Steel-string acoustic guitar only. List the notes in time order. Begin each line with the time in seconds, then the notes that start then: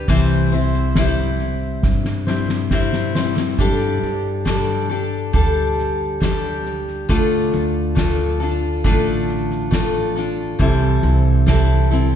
0.08 C3 E3 G3 C4 E4 C5
0.52 G3 C4 E4 C5
0.96 G3 C4 E4 C5
2.27 G3 C4 E4 C5
2.71 G3 C4 E4 C5
3.15 G3 C4 E4 C5
3.59 G3 D4 G4 A4
4.45 G3 D4 G4 A4
4.89 D4 G4 A4
5.33 G3 D4 G4 A4
6.20 G3 D4 G4 A4
7.09 D3 A3 D4 F4 A4
7.95 A3 D4 F4 A4
8.40 D4 F4 A4
8.84 D3 A3 D4 F4 A4
9.71 A3 D4 F4 A4
10.16 D4 F4 A4
10.59 C3 E3 G3 C4 E4 A4
11.46 G3 C4 E4 A4
11.91 G3 C4 E4 A4